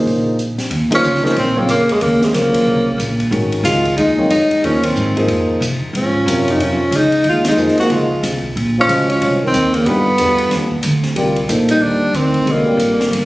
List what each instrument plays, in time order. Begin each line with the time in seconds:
Already playing: trombone C#3, grand piano F3 A#3 D#4 G#4 C5, tenor saxophone A#3
0.06 upright bass A#1, open hi-hat
0.39 closed hi-hat
0.58 muted upright bass stroke, snare, open hi-hat
0.70 upright bass D#2, ride
0.91 grand piano F3 A#3 D#4 G#4 C5, trombone F3, kick, ride
0.95 tenor saxophone C#4
1.03 upright bass C#2, hi-hat pedal
1.15 snare
1.22 grand piano F3 A#3 D#4 G#4 C5, trombone F3, tenor saxophone C#4, snare
1.36 upright bass A#1, trombone D#3, tenor saxophone C4, ride
1.55 trombone C#3, grand piano F#3 C4 F4 A#4 C#5, tenor saxophone A#3
1.69 upright bass F2, trombone C#3, tenor saxophone A#3, hi-hat pedal, ride
1.89 trombone C3, tenor saxophone G#3, ride
2.01 upright bass D#2, trombone C#3, tenor saxophone A#3, ride
2.21 trombone C3, tenor saxophone G#3, snare
2.33 upright bass C#2, trombone C#3, grand piano F#3 F4 A#4 C5 C#5, tenor saxophone A#3, snare, hi-hat pedal, ride
2.54 kick, ride
2.66 upright bass C2
2.98 upright bass A#1, hi-hat pedal, ride
3.19 kick, ride
3.31 upright bass G#1, grand piano D#3 G#3 C#4 F#4 A#4, ride
3.52 ride
3.63 upright bass C#2, trombone G#3, tenor saxophone F4, snare, hi-hat pedal, ride
3.85 kick, ride
3.96 upright bass D#2, trombone G#3, tenor saxophone D#4, ride
4.17 grand piano F#3 C4 F4 A#4 C#5
4.30 upright bass F2, trombone G#3, tenor saxophone D#4, hi-hat pedal, ride
4.51 muted upright bass stroke, ride
4.63 upright bass D#2, grand piano F3 A#3 D#4 G#4 C5, trombone F3, tenor saxophone C#4, ride
4.83 trombone D#3, tenor saxophone C4, kick, ride
4.96 upright bass G#2, hi-hat pedal
5.16 grand piano F3 A#3 D#4 G#4 C5, ride
5.28 upright bass F2, ride
5.49 kick
5.60 upright bass C3, hi-hat pedal, ride
5.82 muted upright bass stroke
5.93 upright bass G#2, trombone F3, tenor saxophone C#4, ride
6.14 kick
6.26 upright bass F#2, grand piano C3 F#3 F4 A#4 C#5, hi-hat pedal, ride
6.48 trombone F#3, tenor saxophone D#4, ride
6.58 upright bass F2, trombone F3, ride
6.63 tenor saxophone C#4
6.91 upright bass C#2, hi-hat pedal, ride
6.95 trombone G#3, tenor saxophone D#4
7.12 ride
7.24 upright bass D#2, trombone G#3, ride
7.29 tenor saxophone F4
7.44 tenor saxophone D#4, snare, ride
7.49 trombone G#3
7.56 upright bass F2, grand piano F3 A#3 D#4 G#4 C5, hi-hat pedal
7.68 snare
7.78 trombone A#3, tenor saxophone F#4, snare, ride
7.89 upright bass C#2, trombone G#3, tenor saxophone F4, ride
8.23 upright bass C2, snare, hi-hat pedal, ride
8.43 kick
8.56 upright bass A#1, ride
8.79 trombone F3, tenor saxophone C#4
8.88 upright bass C#2, grand piano G#3 C#4 F#4 C5 D#5, hi-hat pedal, ride
9.10 trombone F3, tenor saxophone C#4, ride
9.21 upright bass C2, ride
9.43 trombone D#3
9.47 tenor saxophone C4
9.54 upright bass D#2, hi-hat pedal, ride
9.74 trombone C#3, tenor saxophone A#3, ride
9.86 upright bass G2, trombone D3, grand piano G3 D4 D#4 F4 B4, tenor saxophone B3, ride
10.18 upright bass E2, grand piano G3 B3 D4 F4 B4, hi-hat pedal, ride
10.38 ride
10.51 upright bass D#2, snare, ride
10.71 kick
10.83 upright bass D2, hi-hat pedal, ride
11.03 snare, ride
11.16 upright bass C2, grand piano G3 C4 F4 A#4 D5, ride
11.36 ride
11.48 upright bass A#1, grand piano F3 A#3 D#4 A4 C5, hi-hat pedal, ride
11.69 trombone G3, tenor saxophone D#4, ride
11.81 upright bass D#2, trombone G3, tenor saxophone D4
12.13 upright bass D2, trombone D#3, tenor saxophone C4, hi-hat pedal, ride
12.34 kick, ride
12.46 upright bass C2, grand piano G#3 C#4 F#4 B4 D#5, ride
12.50 trombone D3, tenor saxophone A#3
12.66 grand piano G3 C4 F4 A#4 D5, muted upright bass stroke
12.77 upright bass A1, hi-hat pedal, ride
13.00 snare, ride
13.11 upright bass G1, ride